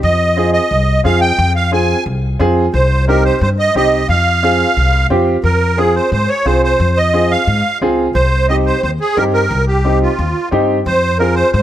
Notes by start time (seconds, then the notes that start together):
0.03 F2 D#5
0.36 C4 F4 G#4
0.53 D#5
0.71 C2
1.04 F2 C4 F4 G#4 F5
1.21 G5
1.39 F2
1.56 F5
1.72 C4 F4 G#4 G#5
2.06 C2
2.39 F2 C4 F4 G#4
2.74 C2 C5
3.08 C4 D#4 G4 A#4
3.25 C5
3.41 G2 C5
3.59 D#5
3.75 C2 C4 D#4 G4 D#5
4.09 F2 F5
4.43 C4 F4 G#4
4.77 C2
5.10 F2 C4 F4 G4
5.44 F2 A#4
5.77 C4 F4 G#4
5.95 C5
6.12 G#2 C5
6.29 C#5
6.45 C2 C4 F4 G#4 C5
6.63 C5
6.80 F2
6.97 D#5
7.13 C4 F4 G#4
7.31 F5
7.47 G#2
7.81 C#2 C4 F4 G#4
8.15 C2 C5
8.48 C4 D#4 G4 D#5
8.66 C5
8.83 D#2 C5
9.00 G#4
9.16 G2 C4 D#4 G4 A#4
9.33 A#4
9.51 C2
9.67 G4
9.85 C4 D#4 G4
10.02 F4
10.19 D#2
10.51 G2 C4 D#4 G4
10.86 F2 C5
11.19 C4 F4 G#4 A#4
11.35 C5
11.53 G#2 C5